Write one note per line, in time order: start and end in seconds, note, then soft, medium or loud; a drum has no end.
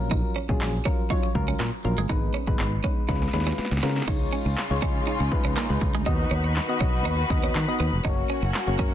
0.00 0.21 A#1 medium
0.00 0.36 F#3 medium
0.00 0.36 C#4 medium
0.00 0.36 F4 medium
0.00 0.36 A#4 loud
0.11 0.20 D#4 medium
0.11 kick loud
0.36 0.45 C#4 medium
0.49 0.57 A#1 medium
0.49 0.73 F#3 medium
0.49 0.73 C#4 medium
0.49 0.73 F4 medium
0.49 0.73 G#4 medium
0.49 muted clean electric guitar stroke soft
0.49 kick medium
0.61 0.78 A#1 medium
0.61 snare medium
0.61 clap loud
0.85 1.02 F#3 medium
0.85 1.02 C#4 medium
0.85 0.95 C#4 medium
0.85 1.02 F4 medium
0.85 1.02 A#4 medium
0.85 kick medium
1.10 1.27 F#3 medium
1.10 1.27 C#4 medium
1.10 1.20 D#4 medium
1.10 1.27 F4 medium
1.10 1.27 C#5 medium
1.10 kick medium
1.23 muted clean electric guitar stroke soft
1.35 1.53 C#2 medium
1.35 1.67 F#3 medium
1.35 1.67 C#4 medium
1.35 1.68 F4 medium
1.35 1.68 A#4 medium
1.35 kick medium
1.48 1.56 C#4 medium
1.60 1.69 A#2 loud
1.60 1.69 A#3 medium
1.60 snare medium
1.60 clap loud
1.84 1.94 A#1 medium
1.84 2.01 F#3 medium
1.84 2.01 C#4 medium
1.84 2.01 F4 medium
1.84 2.01 A#4 medium
1.84 muted clean electric guitar stroke soft
1.98 2.06 G1 loud
1.98 2.06 G#3 medium
2.09 2.27 G#1 loud
2.09 2.33 G#3 medium
2.09 2.34 B3 medium
2.09 2.19 D#4 medium
2.09 2.34 D#4 medium
2.09 2.34 B4 medium
2.09 kick loud
2.34 2.44 C#4 medium
2.47 2.56 G#1 medium
2.47 2.71 G#3 medium
2.47 2.71 B3 medium
2.47 2.71 D#4 medium
2.47 2.72 B4 loud
2.47 muted clean electric guitar stroke soft
2.47 kick medium
2.59 2.77 G#1 medium
2.59 snare medium
2.59 clap loud
2.84 3.00 G#3 medium
2.84 3.00 B3 medium
2.84 2.93 C#4 medium
2.84 3.00 D#4 medium
2.84 3.01 B4 medium
2.84 kick medium
3.08 3.26 C#2 loud
3.08 3.25 G#3 medium
3.08 3.25 C#4 medium
3.08 3.18 D#4 medium
3.08 3.25 F4 medium
3.08 3.25 B4 medium
3.08 kick medium
3.08 snare medium
3.15 snare soft
3.22 snare medium
3.28 snare medium
3.33 3.51 D#2 medium
3.33 3.66 G#3 medium
3.33 3.66 C#4 medium
3.33 3.66 F4 medium
3.33 3.66 B4 medium
3.33 muted clean electric guitar stroke soft
3.33 snare medium
3.40 snare medium
3.47 3.55 C#4 medium
3.47 snare medium
3.52 snare medium
3.58 muted fingered electric bass stroke soft
3.58 snare medium
3.65 snare medium
3.71 3.80 C#2 medium
3.71 snare medium
3.77 snare medium
3.83 4.00 C#3 loud
3.83 4.00 G#3 medium
3.83 3.92 B3 medium
3.83 4.00 C#4 medium
3.83 4.00 F4 medium
3.83 4.00 A#4 medium
3.83 snare medium
3.90 snare medium
3.96 snare medium
4.02 snare medium
4.08 4.25 C#2 loud
4.08 6.04 C#3 medium
4.08 4.48 G#3 medium
4.08 6.04 C#4 medium
4.08 4.17 D#4 medium
4.08 8.01 D#4 medium
4.08 4.49 D#4 medium
4.08 6.04 F4 medium
4.08 4.49 F4 medium
4.08 4.49 C#5 medium
4.08 kick loud
4.08 crash medium
4.33 4.42 C#4 medium
4.46 4.54 C#2 medium
4.46 muted clean electric guitar stroke soft
4.57 snare medium
4.57 clap loud
4.70 4.79 C#2 loud
4.70 4.78 G#3 medium
4.70 4.78 D#4 medium
4.70 4.78 F4 medium
4.70 4.78 C#5 medium
4.82 5.00 C#3 loud
4.82 5.15 G#3 medium
4.82 4.92 C#4 medium
4.82 5.15 D#4 medium
4.82 5.15 F4 medium
4.82 5.15 C#5 medium
4.82 kick medium
5.07 5.16 D#4 medium
5.20 5.28 C#2 medium
5.20 muted clean electric guitar stroke soft
5.31 5.56 G#3 medium
5.31 5.56 D#4 medium
5.31 5.56 F4 medium
5.31 5.56 B4 medium
5.31 kick medium
5.45 5.53 C#2 medium
5.45 5.53 C#4 medium
5.57 5.66 A#3 medium
5.57 snare medium
5.57 clap loud
5.69 5.78 C#2 medium
5.69 5.94 G#3 medium
5.69 5.94 D#4 medium
5.69 5.94 F4 medium
5.69 5.94 B4 medium
5.81 5.91 C#2 medium
5.81 muted clean electric guitar stroke soft
5.81 kick medium
5.95 6.03 D2 medium
5.95 6.03 G#3 medium
6.06 6.24 D#2 medium
6.06 8.03 D#3 medium
6.06 6.47 B3 medium
6.06 6.47 D#4 medium
6.06 6.16 D#4 medium
6.06 8.03 F#4 medium
6.06 6.47 F#4 medium
6.06 8.03 B4 medium
6.06 6.47 D#5 medium
6.06 kick loud
6.06 closed hi-hat loud
6.31 6.58 D#2 loud
6.31 6.40 C#4 medium
6.31 closed hi-hat medium
6.44 muted clean electric guitar stroke soft
6.56 snare medium
6.56 clap loud
6.56 closed hi-hat medium
6.69 6.76 B3 medium
6.69 6.76 D#4 medium
6.69 6.77 F#4 medium
6.69 6.77 D#5 loud
6.80 7.05 B1 medium
6.80 6.90 C#4 medium
6.80 7.13 F#4 medium
6.80 7.13 D#5 medium
6.80 kick medium
6.80 closed hi-hat medium
7.05 7.23 D#2 medium
7.05 7.15 D#4 medium
7.05 closed hi-hat loud
7.30 7.47 D#2 medium
7.30 7.54 B3 medium
7.30 7.54 D#4 medium
7.30 7.54 F#4 medium
7.30 7.54 D#5 medium
7.30 muted clean electric guitar stroke soft
7.30 kick medium
7.30 closed hi-hat medium
7.44 7.52 C#4 medium
7.55 7.64 D#3 loud
7.55 snare medium
7.55 clap loud
7.55 closed hi-hat medium
7.68 7.92 B3 medium
7.68 7.92 D#4 medium
7.68 7.92 F#4 medium
7.68 7.92 D#5 medium
7.80 7.89 D#2 medium
7.80 7.89 B3 medium
7.80 closed hi-hat medium
7.93 8.01 F1 medium
8.04 8.22 F#1 loud
8.04 8.45 A#3 medium
8.04 8.94 A#3 medium
8.04 8.94 C#4 medium
8.04 8.45 C#4 medium
8.04 8.14 D#4 medium
8.04 8.94 F#4 medium
8.04 8.45 F#4 medium
8.04 8.45 C#5 loud
8.04 kick loud
8.04 closed hi-hat loud
8.29 8.39 C#4 medium
8.29 closed hi-hat medium
8.42 8.51 F#1 medium
8.42 muted clean electric guitar stroke soft
8.54 snare medium
8.54 clap loud
8.54 closed hi-hat medium
8.67 8.76 F#1 loud
8.67 8.75 A#3 medium
8.67 8.75 C#4 medium
8.67 8.75 F#4 medium
8.67 8.75 C#5 loud
8.79 8.94 F#2 loud
8.79 8.94 A#3 medium
8.79 8.94 C#4 medium
8.79 8.88 C#4 medium
8.79 8.94 F#4 medium
8.79 8.94 A#4 medium
8.79 kick medium
8.79 closed hi-hat medium